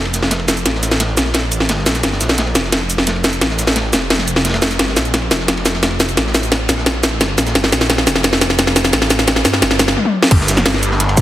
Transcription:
Already playing: F1
0.05 ride
0.14 snare, closed hi-hat, cabasa
0.23 snare, ride
0.31 snare, closed hi-hat, ride, cabasa
0.39 ride
0.48 snare, closed hi-hat, ride, cabasa
0.57 closed hi-hat, cabasa
0.66 A1, snare, closed hi-hat, ride
0.74 snare
0.82 snare, closed hi-hat, ride, cabasa
0.91 snare, closed hi-hat, cabasa
1.00 snare, closed hi-hat, ride
1.17 A#1, snare, closed hi-hat, ride, cabasa
1.26 snare
1.34 snare, closed hi-hat, ride
1.51 A1, closed hi-hat, ride, cabasa
1.60 snare
1.69 G1, snare, closed hi-hat, ride, cabasa
1.77 snare
1.86 A#1, snare, closed hi-hat, ride, cabasa
1.94 snare, closed hi-hat, cabasa
2.03 G1, snare, closed hi-hat, ride
2.12 snare
2.20 A#1, snare, closed hi-hat, ride, cabasa
2.29 snare, closed hi-hat, cabasa
2.38 snare, closed hi-hat, ride
2.47 ride
2.55 F1, snare, closed hi-hat, ride, cabasa
2.64 snare
2.72 snare, closed hi-hat, ride
2.90 closed hi-hat, ride, cabasa
2.98 snare
3.07 snare, closed hi-hat, ride, cabasa
3.16 ride
3.24 snare, closed hi-hat, ride, cabasa
3.33 closed hi-hat, cabasa
3.41 A1, snare, closed hi-hat, ride
3.50 snare
3.59 snare, closed hi-hat, ride, cabasa
3.67 snare, closed hi-hat, cabasa
3.76 snare, closed hi-hat, ride
3.93 F1, snare, closed hi-hat, ride, cabasa
4.10 snare, closed hi-hat, ride
4.18 snare, ride
4.28 closed hi-hat, cabasa
4.36 snare, ride
4.44 snare, closed hi-hat, ride, cabasa
4.49 snare, ride
4.54 snare, ride
4.62 snare, closed hi-hat, ride, cabasa
4.70 snare, closed hi-hat, cabasa
4.79 G1, snare, closed hi-hat, ride
4.88 snare
4.96 A#1, snare, closed hi-hat, ride, cabasa
5.05 closed hi-hat, cabasa
5.14 snare, closed hi-hat, ride
5.22 ride
5.31 F1, snare, closed hi-hat, ride, cabasa
5.39 snare
5.48 snare, closed hi-hat, ride
5.57 ride
5.65 snare, closed hi-hat, cabasa
5.74 snare, ride
5.83 snare, closed hi-hat, ride, cabasa
5.90 ride
6.00 snare, closed hi-hat, ride, cabasa
6.09 closed hi-hat, cabasa
6.17 A1, snare, closed hi-hat, ride
6.26 snare
6.34 snare, closed hi-hat, ride, cabasa
6.43 closed hi-hat, cabasa
6.52 snare, closed hi-hat, ride
6.69 A#1, snare, closed hi-hat, ride, cabasa
6.78 snare
6.86 snare, closed hi-hat, ride
7.03 A1, snare, closed hi-hat, ride, cabasa
7.21 G1, snare, closed hi-hat, ride, cabasa
7.28 snare
7.37 A#1, snare, closed hi-hat, ride, cabasa
7.46 snare, closed hi-hat, cabasa
7.55 G1, snare, closed hi-hat, ride
7.63 snare
7.72 A#1, snare, closed hi-hat, ride, cabasa
7.81 snare, closed hi-hat, cabasa
7.89 snare, closed hi-hat, ride
7.98 snare, ride
8.07 F1, snare, closed hi-hat, ride, cabasa
8.16 snare
8.23 snare, closed hi-hat, ride
8.33 snare
8.41 snare, closed hi-hat, ride, cabasa
8.50 snare
8.58 snare, closed hi-hat, ride, cabasa
8.67 snare, ride
8.76 snare, closed hi-hat, ride, cabasa
8.85 snare, closed hi-hat, cabasa
8.92 A1, snare, closed hi-hat, ride
9.02 snare
9.10 snare, closed hi-hat, ride, cabasa
9.19 snare, closed hi-hat, cabasa
9.27 snare, closed hi-hat, ride
9.36 snare
9.45 G2, snare, closed hi-hat, ride, cabasa
9.53 snare
9.62 G1, snare, closed hi-hat, ride
9.71 snare, ride
9.79 snare, closed hi-hat, ride, cabasa
9.88 snare
9.97 high tom
10.05 high tom
10.22 snare
10.31 G1, kick, closed hi-hat, crash, ride
10.40 snare
10.48 snare, closed hi-hat, ride, cabasa
10.57 snare, cabasa
10.65 G1, snare, closed hi-hat, ride
10.74 snare, ride
10.83 closed hi-hat, ride, cabasa
10.91 snare
11.00 snare, closed hi-hat, ride
11.09 ride
11.17 G1, kick, snare, closed hi-hat, cabasa

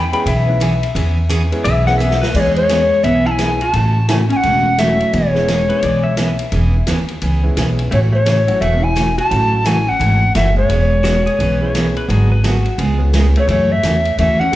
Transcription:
Already playing: E2 G5 B5
0.12 G#3 B3 C#4 E4 G#4 G5 B5, ride
0.26 B1 E3 B3 C#4 G#4 E5, ride
0.47 G#3 B3 C#4 E4 G#4
0.60 E3 B3 C#4 G#4, hi-hat pedal, ride
0.83 ride
0.95 E2 E3 B3 C#4 G#4, ride
1.29 E3 B3 C#4 G#4, hi-hat pedal, ride
1.52 G#3 B3 C#4 E4 G#4, ride
1.64 B1 E3 B3 C#4 G#4 E5, ride
1.87 G#3 B3 C#4 E4 G#4 F#5, snare
1.98 E3 B3 C#4 G#4 E5, hi-hat pedal
2.11 snare
2.21 B4, snare
2.34 E2 E3 G#3 B3 C#4 G#4 D5, kick, crash
2.40 C#5
2.56 G#3 C#5, ride
2.69 E3 B3 C#4 G#4, snare, hi-hat pedal, ride
3.03 B1 E3 B3 C#4 G#4 E5, ride
3.26 E4 A5
3.31 G#5
3.38 E3 G#3 B3 C#4 E4 G#4, snare, hi-hat pedal, ride
3.61 F#4 A5, ride
3.73 A1 C#3 E3 A3 C#4 F#4, ride
4.09 C#3 E3 A3 C#4 E4 F#4 G#5, snare, hi-hat pedal, ride
4.30 C#4 G#5, ride
4.37 F#5
4.43 E1 C#3 E3 A3 C#4 F#4, ride
4.77 C#3 E3 F#3 A3 C#4 E4 F#4 E5, snare, hi-hat pedal, ride
5.00 ride
5.13 E1 E3 G#3 B3 C#4 G#4 C#5, ride
5.34 G#3 B3 C#4 E4 G#4, snare
5.48 E3 B3 C#4 G#4, snare, hi-hat pedal, ride
5.68 G#3 B3 C#4 E4 G#4 B4, ride
5.83 B1 E3 B3 C#4 G#4 D5, ride
6.04 E5
6.17 E3 B3 C#4 G#4 E5, snare, hi-hat pedal, ride
6.39 ride
6.52 E1 E3 B3 C#4 G#4, ride
6.87 D#2 E3 B3 C#4 G#4, snare, hi-hat pedal, ride
7.08 ride
7.22 C#2 E3 B3 C#4 G#4, ride
7.42 G#3 B3 C#4 E4 G#4
7.57 B1 E3 B3 C#4 G#4, snare, hi-hat pedal, ride
7.79 ride
7.91 A1 C#3 E3 A3 C#4 F#4 C#5, ride
8.13 A3 C#5
8.26 C#3 E3 A3 C#4 F#4, snare, hi-hat pedal, ride
8.47 F#3 A3 C#4 E4 F#4, ride
8.61 E1 C#3 E3 A3 C#4 F#4 E5, ride
8.81 E4 G#5
8.95 C#3 E3 A3 C#4 F#4, snare, hi-hat pedal, ride
9.18 F#4 A5, ride
9.30 A1 C#3 E3 F#3 A3 C#4 E4 F#4, ride
9.64 C#3 E3 A3 C#4 E4 F#4 G#5, snare, hi-hat pedal, ride
9.87 C#4 F#5
10.00 G#1 C#3 E3 A3 C#4 F#4, ride
10.35 F#1 C#3 E3 A3 C#4 F#4 E5, snare, hi-hat pedal, ride
10.57 G#3 C#5
10.69 E1 E3 B3 C#4 G#4, ride
11.03 E3 B3 C#4 F#4 G#4, snare, hi-hat pedal, ride
11.26 G#4, ride
11.38 B1 E3 B3 C#4 G#4 B4, ride
11.61 G#3 B3 C#4 E4 G#4 C#5
11.75 E3 B3 C#4 G#4, snare, hi-hat pedal, ride
11.96 B4, ride
12.08 G#1 D3 F#3 G#3 B3 D4 F#4 G#4, ride
12.32 B4
12.44 D3 F#3 B3 F#4 G#4, snare, hi-hat pedal, ride
12.66 ride
12.78 C#2 C#3 G#3 B3 F4 G#4, ride
12.98 G#3 B3 C#4 F4 G#4
13.13 C#3 G#3 B3 F4 G#4, snare, hi-hat pedal, ride
13.36 A3 C#5, ride
13.48 F#2 C#3 E3 A3 C#4 F#4 C#5, ride
13.72 A3 E5
13.83 E2 C#3 E3 A3 C#4 F#4, snare, hi-hat pedal, ride
14.05 ride
14.18 D#2 C#3 E3 A3 C#4 F#4 E5, ride
14.40 C#4 F#5
14.51 A3 C#4 E4 F#4 A4

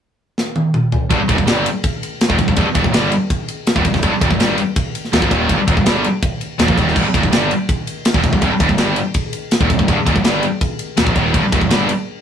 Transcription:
0.38 snare
0.56 high tom
0.74 mid tom
0.92 floor tom
1.10 C1 C2 G2, kick, ride
1.20 muted distorted electric guitar stroke, muted picked electric bass stroke
1.29 D#1 D#2 A#2, kick, ride
1.38 C1 C2 G2, kick
1.47 G1 G2 D3 G3, snare, ride
1.66 ride
1.84 kick, ride
2.03 ride
2.21 snare, ride
2.30 D#1 D#2 A#2, kick
2.38 C1 C2 G2, kick, ride
2.48 C1 C2 G2, kick
2.56 C1 C2 G2, kick, ride
2.66 muted picked electric bass stroke, muted distorted electric guitar stroke
2.75 D#1 D#2 A#2, kick, ride
2.84 C1 C2 G2, kick
2.93 G1 G2 D3 G3, snare, ride
3.12 ride
3.30 kick, ride
3.48 ride
3.67 snare, ride
3.76 D#1 D#2 A#2, kick
3.85 C1 C2 G2, kick, ride
3.94 C1 C2 G2, kick, snare
4.03 C1 C2 G2, kick, ride
4.12 muted distorted electric guitar stroke, muted picked electric bass stroke
4.21 D#1 D#2 A#2, kick, ride
4.30 C1 C2 G2, kick
4.40 G1 G2 D3 G3, snare, ride
4.58 ride
4.76 kick, ride
4.95 ride
5.05 snare
5.13 D#1 D#2 A#2, snare, ride
5.22 A#1 A#2 F3, kick
5.31 D#1 D#2 A#2 D#3, kick, ride
5.48 C1 C2 G2, kick, ride
5.59 muted distorted electric guitar stroke, muted picked electric bass stroke
5.67 D#1 D#2 A#2, kick, ride
5.77 C1 C2 G2, kick
5.86 G1 G2 D3 G3, snare, ride
6.04 ride
6.22 kick, ride
6.41 ride
6.58 D#1 D#2 A#2, snare, ride
6.68 A#1 A#2 F3, kick
6.77 D#1 D#2 A#2 D#3, kick, ride
6.88 snare
6.96 C1 C2 G2, kick, crash
7.05 muted distorted electric guitar stroke, muted picked electric bass stroke
7.14 D#1 D#2 A#2, kick, ride
7.23 C1 C2 G2, kick
7.32 G1 G2 D3 G3, snare, ride
7.51 ride
7.69 kick, ride
7.87 ride
8.05 snare, ride
8.14 D#1 D#2 A#2, kick
8.23 C1 C2 G2, kick, ride
8.32 C1 C2 G2, kick
8.42 C1 C2 G2, kick, ride
8.51 muted distorted electric guitar stroke, muted picked electric bass stroke
8.60 D#1 D#2 A#2, kick, ride
8.69 C1 C2 G2, kick
8.78 G1 G2 D3 G3, snare, ride
8.96 ride
9.14 kick, ride
9.33 ride
9.51 snare, ride
9.60 D#1 D#2 A#2, kick
9.70 C1 C2 G2, kick, ride
9.79 C1 C2 G2, kick
9.88 C1 C2 G2, kick, ride
9.97 muted distorted electric guitar stroke, muted picked electric bass stroke
10.06 D#1 D#2 A#2, kick, ride
10.15 C1 C2 G2, kick
10.23 G1 G2 D3 G3, snare, ride
10.43 ride
10.61 kick, ride
10.79 ride
10.97 D#1 D#2 A#2, snare, ride
11.05 A#1 A#2 F3, kick
11.15 D#1 D#2 A#2 D#3, kick, ride
11.33 C1 C2 G2, kick, ride
11.43 muted distorted electric guitar stroke, muted picked electric bass stroke
11.52 D#1 D#2 A#2, kick, ride
11.61 C1 C2 G2, kick
11.70 G1 G2 D3 G3, snare, ride
11.89 ride

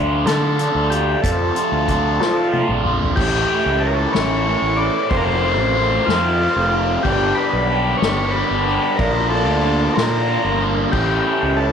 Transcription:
Already playing: D2 D3 A3 D4 F4 A4 D5 F5 D6
0.25 D3 A3 D4 F4 A4, snare, closed hi-hat
0.58 D3 A3 D4 F4, closed hi-hat
0.75 D2
0.90 A3 D4 F4 G4, closed hi-hat
1.22 F2 C3 F3 A3 A4 F5 C6, kick, closed hi-hat
1.26 C4 F4
1.55 F3 A3 C4 F4, closed hi-hat
1.72 D2
1.88 F3 A3 C4 F4, kick, closed hi-hat
2.19 F3 A3 C4 F4, snare
2.51 F3 A3 C4 F4, high tom
2.69 A#1, mid tom
2.83 F3 A3 C4 F4, mid tom
3.01 floor tom
3.15 A1 A2 E3 A3 C#4 E4 G4 A4 E5 C#6, kick, crash
3.48 A3 C#4 E4, ride
3.66 C#2
3.79 E3 A3 C#4 A4, ride
3.84 E4 A#4
3.95 A4
4.13 A1 A3 C#4 E4 C#5, snare, ride
4.46 E3 A3 C#4 E4, ride
4.62 A1
4.76 C#4 E4 D5, ride
4.82 A3
5.09 F1 F2 C3 F3 A3 C4 F4 C5 F5 C6, kick, ride
5.17 A#4
5.24 C5
5.42 F3 A3 C4 F4, ride
5.58 A1
5.74 F3 A3 C4 F4, ride
6.06 F2 A3 C4 F4, snare, ride
6.10 F3
6.40 F3 A3 C4 F4, ride
6.56 F1
6.72 F3 A3 C4 F4, ride
7.03 G1 G2 D3 G3 B3 D4 G4 B4 G5, kick, crash
7.35 G3 B3 D4 G4 B4, ride
7.53 B1
7.68 G3 B3 D4 G4, ride
7.98 G4 C#5
8.02 G1 G3 B3 D4, snare, ride
8.31 G3 B3 B4, ride
8.36 D4 G4
8.51 G1
8.66 G3 B3 D4 G4, ride
8.96 A#1 A#2 D3 A#3 A#4 F5, kick, ride
9.00 D4 F4
9.30 D4 F4 A4, ride
9.34 A#3
9.48 D2
9.62 D3 A#3 D4 F4, ride
9.94 A#2 D4 F4 A#4, snare, ride
9.98 A#3
10.27 D3 A#3 D4 F4, ride
10.44 G1
10.61 A#3 D4 F4, ride
10.91 A1 A2 E3 A3 G4 A4 E5 A5 C#6, kick, crash
10.96 C#4 E4
11.25 C#4 E4, ride
11.30 A3
11.43 C#2
11.57 E3 A3 C#4 A4, ride
11.61 E4

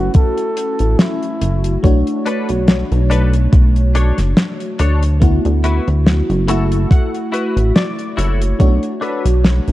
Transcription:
Already playing: A3 C#4 E4 F#4
0.14 A4, kick, closed hi-hat
0.38 closed hi-hat
0.57 closed hi-hat
0.79 A1, closed hi-hat
0.99 E4, snare, closed hi-hat
1.23 closed hi-hat
1.41 F#1, closed hi-hat
1.64 closed hi-hat
1.83 B1 A3 D4 F#4 C#5, kick, closed hi-hat
2.07 closed hi-hat
2.26 D4 A4 B4, closed hi-hat
2.49 B1, closed hi-hat
2.68 snare, closed hi-hat
2.92 B1, closed hi-hat
3.10 D4 A4 B4, closed hi-hat
3.34 closed hi-hat
3.53 B1, kick, closed hi-hat
3.76 closed hi-hat
3.95 D4 A4 C#5, closed hi-hat
4.18 F#1, snare, closed hi-hat
4.37 snare, closed hi-hat
4.60 closed hi-hat
4.79 D2 D4 A4 C#5, closed hi-hat
5.03 closed hi-hat
5.20 A3 B3 E4 F#4, kick, closed hi-hat
5.45 D2, closed hi-hat
5.64 E4 F#4 B4, closed hi-hat
5.88 D2, closed hi-hat
6.06 snare, closed hi-hat
6.30 F#1, closed hi-hat
6.47 A3 E4 F#4 A4 A5, closed hi-hat
6.72 closed hi-hat
6.91 F#5, kick, closed hi-hat
7.14 closed hi-hat
7.32 E4 F#4 B4 E5, closed hi-hat
7.57 A1, closed hi-hat
7.76 D5, snare, closed hi-hat
7.99 closed hi-hat
8.17 F#1 E4 F#4 A4 C#5, closed hi-hat
8.41 closed hi-hat
8.59 B1 A3 D4 F#4 C#5, kick, closed hi-hat
8.83 closed hi-hat
9.01 D4 A4 B4, closed hi-hat
9.26 B1, closed hi-hat
9.45 snare, closed hi-hat
9.68 B1, closed hi-hat

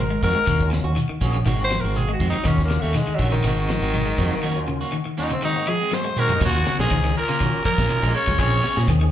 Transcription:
Already playing: G#1
0.00 A#4
0.10 G#3
0.22 F2 D#3 G#3 A#3 C4 F#4 A#4, kick, closed hi-hat, shekere
0.35 G#3
0.46 D#2 D#3 A#3 C#4 F#4, kick, closed hi-hat, shekere
0.60 F#3 C#4 F4, kick
0.71 C#3, snare, closed hi-hat, shekere
0.84 D#2 F#4, muted clean electric guitar stroke
0.96 D#3, closed hi-hat, shekere
1.09 D#3, muted fingered electric bass stroke
1.21 A#1 F#3 A#3 C#4 F#4 G#4, kick, closed hi-hat, shekere
1.34 muted clean electric guitar stroke
1.46 G#1 D#3 G#3 F#4, muted clean electric guitar stroke, closed hi-hat, shekere
1.60 G#3 A#3 C4 F#4
1.64 C5
1.70 F3, snare, closed hi-hat, shekere
1.80 G#1 A#4
1.84 G#3 C4 F#4
1.96 A#3 C4 F#4 G#4, closed hi-hat, shekere
2.09 G#3
2.13 F#4
2.20 F2 D#3 G#3 C4, kick, closed hi-hat, shekere
2.29 C4 D#4 F#4
2.33 F#3
2.43 D#2 D#3 F#3 A#3 C#4 F4 F#4, kick, closed hi-hat, shekere
2.58 kick, snare
2.64 A#3
2.70 C#3, snare, closed hi-hat, shekere
2.81 D#2 A3 A#3 C#4 F#4
2.94 D#3 G#3, snare, closed hi-hat, shekere
3.07 D#3, muted fingered electric bass stroke
3.15 D#3 F#3, closed hi-hat
3.19 A#1 F#3 C#4 F4 F#4, kick, shekere
3.31 C#3 D#3
3.44 G#1 D#3 C4 F#4, muted clean electric guitar stroke, closed hi-hat, shekere
3.57 G#3 C4 F#4
3.69 F3, snare, closed hi-hat, shekere
3.81 G#1 G#3 C4 F#4, closed hi-hat
3.94 F#3, closed hi-hat, shekere
4.06 G#3
4.18 F2 D#3 G#3 A#3 C4 F#4, kick, closed hi-hat, shekere
4.31 F#3
4.43 D#3 A#3 C#4 F#4
4.56 D#2 F#3 C#4 F4
4.68 C#3
4.81 A#3 C#4 F#4
4.92 D#3
5.05 D#3
5.17 D#2 D#3 F#3 A#3 C#4 D#4 F4 F#4
5.30 C#3 C4
5.42 D#3 G#3 C4 D#4 F#4
5.55 G#2 G#3 A#3 C4 F#4
5.67 F3 G#4
5.81 G#3 C4
5.91 G#2 F#3 A#3 C4 F#4 C5, snare
6.04 G#3
6.17 F#2 D#3 G#3 C4 F#4 A#4, mid tom
6.21 F#4
6.29 F#3 C4 F#4, floor tom
6.33 D#2 D#4
6.41 D#2 F#2 D#3 F#3 A#3 C#4 F4, muted clean electric guitar stroke, kick, crash, shekere
6.45 F#4
6.66 C#3, snare, ride bell, shekere
6.79 A#1 G#2 A#3 C#4 F4 G#4, snare
6.90 C#2 D#3 F#3 C#4 G#4, kick, ride bell, shekere
7.04 D#3, snare
7.15 A#2 A#4, open hi-hat, shekere
7.29 C#3 A#3 F4, snare, ride bell
7.40 D#3 F#3 C#4 F#4, kick, ride bell, shekere
7.65 A#2 F3 A#4, kick, ride bell, shekere
7.78 A#1 A#3 C#4 F4, kick, snare
7.89 F#3 C#4 D#4, muted clean electric guitar stroke, ride bell, shekere
8.02 A#1 G#3 A#3 C#4 F4
8.14 C#3 C#5, ride bell, shekere
8.27 C#2 F#3, kick, snare
8.38 A#1 C#3 F3 C4 C#4 G#4 C#5, muted clean electric guitar stroke, kick, ride bell, shekere
8.63 muted clean electric guitar stroke, snare, ride bell, shekere
8.76 A#2 C4 C#4 G#4, snare, ride bell
8.88 D#2 D#3 C4 C#4 G#4, kick, ride bell, shekere
9.01 D#3

